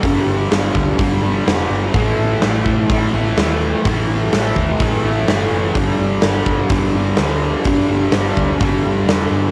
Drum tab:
HH |o-o-o-o-|o-o-o-o-|o-o-o-o-|o-o-o-o-|
SD |--o---o-|--o---o-|--o---o-|--o---o-|
BD |o--oo---|o--oo---|o--oo---|o--oo---|

HH |o-o-o-o-|
SD |--o---o-|
BD |o--oo---|